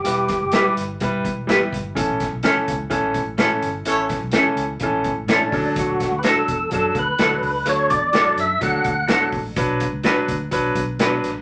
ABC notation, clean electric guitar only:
X:1
M:4/4
L:1/8
Q:1/4=126
K:D
V:1 name="Clean electric guitar"
z2 [EGB] z3 [EGB] z | z2 [CEA] z3 [CEA] z | z2 [CEA] z3 [CEA] z | z2 [DFA] z3 [DFA] z |
z2 [DFA] z3 [DFA] z | z2 [DFB] z3 [DFB] z |]